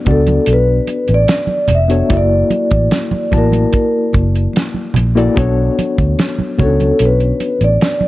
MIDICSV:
0, 0, Header, 1, 6, 480
1, 0, Start_track
1, 0, Tempo, 814111
1, 1244, Time_signature, 4, 2, 24, 8
1, 4763, End_track
2, 0, Start_track
2, 0, Title_t, "Vibraphone"
2, 0, Program_c, 0, 11
2, 65, Note_on_c, 0, 69, 66
2, 301, Note_off_c, 0, 69, 0
2, 313, Note_on_c, 0, 71, 84
2, 669, Note_off_c, 0, 71, 0
2, 675, Note_on_c, 0, 74, 82
2, 1030, Note_off_c, 0, 74, 0
2, 1031, Note_on_c, 0, 76, 74
2, 1264, Note_off_c, 0, 76, 0
2, 1279, Note_on_c, 0, 74, 82
2, 1991, Note_on_c, 0, 70, 67
2, 2003, Note_off_c, 0, 74, 0
2, 2434, Note_off_c, 0, 70, 0
2, 3905, Note_on_c, 0, 69, 71
2, 4142, Note_off_c, 0, 69, 0
2, 4159, Note_on_c, 0, 71, 74
2, 4479, Note_off_c, 0, 71, 0
2, 4506, Note_on_c, 0, 74, 78
2, 4763, Note_off_c, 0, 74, 0
2, 4763, End_track
3, 0, Start_track
3, 0, Title_t, "Reed electric piano"
3, 0, Program_c, 1, 4
3, 0, Control_c, 1, 64, 127
3, 0, Note_on_c, 1, 59, 77
3, 0, Note_on_c, 1, 62, 62
3, 0, Note_on_c, 1, 66, 70
3, 0, Note_on_c, 1, 69, 66
3, 0, Note_on_c, 1, 74, 74
3, 31, Note_off_c, 1, 59, 0
3, 31, Note_on_c, 1, 59, 62
3, 39, Note_off_c, 1, 62, 0
3, 39, Note_on_c, 1, 62, 57
3, 42, Note_off_c, 1, 66, 0
3, 42, Note_on_c, 1, 66, 58
3, 45, Note_off_c, 1, 69, 0
3, 45, Note_on_c, 1, 69, 64
3, 48, Note_off_c, 1, 74, 0
3, 48, Note_on_c, 1, 74, 62
3, 794, Note_off_c, 1, 59, 0
3, 798, Note_off_c, 1, 62, 0
3, 800, Note_off_c, 1, 66, 0
3, 801, Note_off_c, 1, 69, 0
3, 803, Note_off_c, 1, 74, 0
3, 1109, Note_on_c, 1, 59, 63
3, 1114, Note_on_c, 1, 62, 54
3, 1118, Note_on_c, 1, 66, 52
3, 1123, Note_on_c, 1, 69, 61
3, 1127, Note_on_c, 1, 73, 62
3, 1211, Note_off_c, 1, 59, 0
3, 1214, Note_off_c, 1, 62, 0
3, 1216, Note_off_c, 1, 66, 0
3, 1218, Note_off_c, 1, 69, 0
3, 1220, Note_off_c, 1, 73, 0
3, 1231, Note_on_c, 1, 58, 64
3, 1234, Note_on_c, 1, 64, 54
3, 1238, Note_on_c, 1, 66, 58
3, 1246, Note_on_c, 1, 69, 58
3, 1249, Note_on_c, 1, 74, 69
3, 1252, Control_c, 1, 64, 0
3, 1340, Control_c, 1, 64, 127
3, 1806, Note_off_c, 1, 58, 0
3, 1807, Note_off_c, 1, 64, 0
3, 1809, Note_off_c, 1, 66, 0
3, 1813, Note_off_c, 1, 69, 0
3, 1814, Note_off_c, 1, 74, 0
3, 1954, Note_on_c, 1, 58, 65
3, 1959, Note_on_c, 1, 64, 52
3, 1963, Note_on_c, 1, 66, 64
3, 1964, Note_on_c, 1, 81, 61
3, 1969, Note_on_c, 1, 74, 70
3, 2717, Note_off_c, 1, 58, 0
3, 2719, Note_off_c, 1, 64, 0
3, 2721, Note_off_c, 1, 66, 0
3, 2722, Note_off_c, 1, 81, 0
3, 2724, Note_off_c, 1, 74, 0
3, 3036, Note_on_c, 1, 58, 81
3, 3038, Note_on_c, 1, 64, 62
3, 3042, Note_on_c, 1, 66, 72
3, 3047, Note_on_c, 1, 69, 76
3, 3050, Note_on_c, 1, 74, 92
3, 3135, Note_off_c, 1, 58, 0
3, 3136, Note_off_c, 1, 64, 0
3, 3138, Note_off_c, 1, 66, 0
3, 3141, Note_off_c, 1, 69, 0
3, 3142, Note_off_c, 1, 74, 0
3, 3153, Note_on_c, 1, 59, 78
3, 3157, Note_on_c, 1, 62, 74
3, 3161, Note_on_c, 1, 66, 69
3, 3166, Note_on_c, 1, 69, 65
3, 3168, Note_on_c, 1, 73, 94
3, 3173, Control_c, 1, 64, 0
3, 3271, Control_c, 1, 64, 127
3, 3727, Note_off_c, 1, 59, 0
3, 3729, Note_off_c, 1, 62, 0
3, 3731, Note_off_c, 1, 66, 0
3, 3734, Note_off_c, 1, 69, 0
3, 3735, Note_off_c, 1, 73, 0
3, 3875, Note_on_c, 1, 59, 58
3, 3879, Note_on_c, 1, 61, 52
3, 3883, Note_on_c, 1, 66, 66
3, 3888, Note_on_c, 1, 69, 52
3, 3891, Note_on_c, 1, 73, 80
3, 3919, Note_on_c, 1, 62, 56
3, 3921, Note_off_c, 1, 61, 0
3, 4638, Note_off_c, 1, 59, 0
3, 4642, Note_off_c, 1, 66, 0
3, 4644, Note_off_c, 1, 69, 0
3, 4646, Note_off_c, 1, 73, 0
3, 4660, Note_off_c, 1, 62, 0
3, 4763, End_track
4, 0, Start_track
4, 0, Title_t, "Fingered electric bass"
4, 0, Program_c, 2, 33
4, 38, Note_on_c, 2, 37, 81
4, 225, Note_off_c, 2, 37, 0
4, 279, Note_on_c, 2, 35, 73
4, 466, Note_off_c, 2, 35, 0
4, 643, Note_on_c, 2, 33, 93
4, 736, Note_off_c, 2, 33, 0
4, 1001, Note_on_c, 2, 29, 77
4, 1187, Note_off_c, 2, 29, 0
4, 1242, Note_on_c, 2, 30, 86
4, 1427, Note_off_c, 2, 30, 0
4, 1602, Note_on_c, 2, 33, 75
4, 1695, Note_off_c, 2, 33, 0
4, 1962, Note_on_c, 2, 33, 86
4, 2147, Note_off_c, 2, 33, 0
4, 2444, Note_on_c, 2, 30, 82
4, 2629, Note_off_c, 2, 30, 0
4, 2926, Note_on_c, 2, 34, 76
4, 3110, Note_off_c, 2, 34, 0
4, 3167, Note_on_c, 2, 35, 100
4, 3351, Note_off_c, 2, 35, 0
4, 3527, Note_on_c, 2, 38, 82
4, 3619, Note_off_c, 2, 38, 0
4, 3887, Note_on_c, 2, 37, 78
4, 4071, Note_off_c, 2, 37, 0
4, 4127, Note_on_c, 2, 35, 70
4, 4311, Note_off_c, 2, 35, 0
4, 4487, Note_on_c, 2, 33, 87
4, 4579, Note_off_c, 2, 33, 0
4, 4763, End_track
5, 0, Start_track
5, 0, Title_t, "Muted fingered electric bass strokes"
5, 1846, Note_on_c, 9, 29, 37
5, 1905, Note_off_c, 9, 29, 0
5, 3769, Note_on_c, 9, 29, 42
5, 3828, Note_off_c, 9, 29, 0
5, 4763, End_track
6, 0, Start_track
6, 0, Title_t, "Drums"
6, 36, Note_on_c, 9, 42, 54
6, 40, Note_on_c, 9, 36, 82
6, 40, Note_on_c, 9, 64, 58
6, 95, Note_off_c, 9, 42, 0
6, 99, Note_off_c, 9, 36, 0
6, 99, Note_off_c, 9, 64, 0
6, 158, Note_on_c, 9, 42, 41
6, 164, Note_on_c, 9, 63, 64
6, 217, Note_off_c, 9, 42, 0
6, 223, Note_off_c, 9, 63, 0
6, 274, Note_on_c, 9, 42, 73
6, 333, Note_off_c, 9, 42, 0
6, 516, Note_on_c, 9, 42, 58
6, 516, Note_on_c, 9, 62, 28
6, 575, Note_off_c, 9, 42, 0
6, 575, Note_off_c, 9, 62, 0
6, 636, Note_on_c, 9, 42, 37
6, 695, Note_off_c, 9, 42, 0
6, 754, Note_on_c, 9, 62, 23
6, 757, Note_on_c, 9, 42, 83
6, 763, Note_on_c, 9, 38, 97
6, 813, Note_off_c, 9, 62, 0
6, 816, Note_off_c, 9, 42, 0
6, 822, Note_off_c, 9, 38, 0
6, 869, Note_on_c, 9, 63, 52
6, 928, Note_off_c, 9, 63, 0
6, 990, Note_on_c, 9, 62, 32
6, 990, Note_on_c, 9, 64, 68
6, 994, Note_on_c, 9, 42, 72
6, 1049, Note_off_c, 9, 62, 0
6, 1049, Note_off_c, 9, 64, 0
6, 1053, Note_off_c, 9, 42, 0
6, 1119, Note_on_c, 9, 42, 48
6, 1178, Note_off_c, 9, 42, 0
6, 1237, Note_on_c, 9, 42, 92
6, 1240, Note_on_c, 9, 36, 87
6, 1296, Note_off_c, 9, 42, 0
6, 1299, Note_off_c, 9, 36, 0
6, 1477, Note_on_c, 9, 62, 24
6, 1477, Note_on_c, 9, 63, 54
6, 1478, Note_on_c, 9, 42, 61
6, 1536, Note_off_c, 9, 62, 0
6, 1536, Note_off_c, 9, 63, 0
6, 1537, Note_off_c, 9, 42, 0
6, 1597, Note_on_c, 9, 42, 47
6, 1602, Note_on_c, 9, 36, 73
6, 1656, Note_off_c, 9, 42, 0
6, 1661, Note_off_c, 9, 36, 0
6, 1718, Note_on_c, 9, 42, 72
6, 1719, Note_on_c, 9, 62, 28
6, 1719, Note_on_c, 9, 63, 40
6, 1723, Note_on_c, 9, 38, 91
6, 1777, Note_off_c, 9, 42, 0
6, 1778, Note_off_c, 9, 62, 0
6, 1778, Note_off_c, 9, 63, 0
6, 1781, Note_off_c, 9, 38, 0
6, 1836, Note_on_c, 9, 63, 67
6, 1895, Note_off_c, 9, 63, 0
6, 1955, Note_on_c, 9, 64, 55
6, 1962, Note_on_c, 9, 36, 81
6, 1962, Note_on_c, 9, 42, 65
6, 2014, Note_off_c, 9, 64, 0
6, 2021, Note_off_c, 9, 36, 0
6, 2021, Note_off_c, 9, 42, 0
6, 2076, Note_on_c, 9, 63, 61
6, 2083, Note_on_c, 9, 42, 45
6, 2135, Note_off_c, 9, 63, 0
6, 2142, Note_off_c, 9, 42, 0
6, 2195, Note_on_c, 9, 62, 24
6, 2197, Note_on_c, 9, 42, 69
6, 2203, Note_on_c, 9, 36, 64
6, 2254, Note_off_c, 9, 62, 0
6, 2256, Note_off_c, 9, 42, 0
6, 2262, Note_off_c, 9, 36, 0
6, 2436, Note_on_c, 9, 62, 30
6, 2441, Note_on_c, 9, 42, 64
6, 2443, Note_on_c, 9, 36, 75
6, 2495, Note_off_c, 9, 62, 0
6, 2500, Note_off_c, 9, 42, 0
6, 2502, Note_off_c, 9, 36, 0
6, 2566, Note_on_c, 9, 42, 40
6, 2625, Note_off_c, 9, 42, 0
6, 2672, Note_on_c, 9, 62, 23
6, 2688, Note_on_c, 9, 42, 72
6, 2693, Note_on_c, 9, 38, 105
6, 2731, Note_off_c, 9, 62, 0
6, 2746, Note_off_c, 9, 42, 0
6, 2752, Note_off_c, 9, 38, 0
6, 2796, Note_on_c, 9, 63, 50
6, 2855, Note_off_c, 9, 63, 0
6, 2912, Note_on_c, 9, 62, 30
6, 2912, Note_on_c, 9, 64, 69
6, 2925, Note_on_c, 9, 42, 73
6, 2971, Note_off_c, 9, 62, 0
6, 2971, Note_off_c, 9, 64, 0
6, 2984, Note_off_c, 9, 42, 0
6, 3049, Note_on_c, 9, 42, 44
6, 3108, Note_off_c, 9, 42, 0
6, 3159, Note_on_c, 9, 62, 29
6, 3167, Note_on_c, 9, 36, 86
6, 3167, Note_on_c, 9, 42, 80
6, 3218, Note_off_c, 9, 62, 0
6, 3225, Note_off_c, 9, 36, 0
6, 3226, Note_off_c, 9, 42, 0
6, 3411, Note_on_c, 9, 42, 67
6, 3411, Note_on_c, 9, 62, 25
6, 3411, Note_on_c, 9, 63, 54
6, 3470, Note_off_c, 9, 42, 0
6, 3470, Note_off_c, 9, 62, 0
6, 3470, Note_off_c, 9, 63, 0
6, 3527, Note_on_c, 9, 36, 67
6, 3527, Note_on_c, 9, 42, 52
6, 3586, Note_off_c, 9, 36, 0
6, 3586, Note_off_c, 9, 42, 0
6, 3647, Note_on_c, 9, 42, 72
6, 3647, Note_on_c, 9, 63, 41
6, 3652, Note_on_c, 9, 38, 90
6, 3706, Note_off_c, 9, 42, 0
6, 3706, Note_off_c, 9, 63, 0
6, 3711, Note_off_c, 9, 38, 0
6, 3764, Note_on_c, 9, 63, 59
6, 3823, Note_off_c, 9, 63, 0
6, 3882, Note_on_c, 9, 62, 30
6, 3882, Note_on_c, 9, 64, 57
6, 3886, Note_on_c, 9, 42, 61
6, 3887, Note_on_c, 9, 36, 81
6, 3941, Note_off_c, 9, 62, 0
6, 3941, Note_off_c, 9, 64, 0
6, 3945, Note_off_c, 9, 42, 0
6, 3946, Note_off_c, 9, 36, 0
6, 4009, Note_on_c, 9, 42, 45
6, 4010, Note_on_c, 9, 63, 54
6, 4068, Note_off_c, 9, 42, 0
6, 4069, Note_off_c, 9, 63, 0
6, 4122, Note_on_c, 9, 42, 80
6, 4181, Note_off_c, 9, 42, 0
6, 4246, Note_on_c, 9, 42, 30
6, 4305, Note_off_c, 9, 42, 0
6, 4365, Note_on_c, 9, 42, 62
6, 4366, Note_on_c, 9, 62, 29
6, 4424, Note_off_c, 9, 42, 0
6, 4425, Note_off_c, 9, 62, 0
6, 4487, Note_on_c, 9, 42, 44
6, 4546, Note_off_c, 9, 42, 0
6, 4607, Note_on_c, 9, 42, 82
6, 4613, Note_on_c, 9, 38, 94
6, 4666, Note_off_c, 9, 42, 0
6, 4672, Note_off_c, 9, 38, 0
6, 4721, Note_on_c, 9, 63, 54
6, 4763, Note_off_c, 9, 63, 0
6, 4763, End_track
0, 0, End_of_file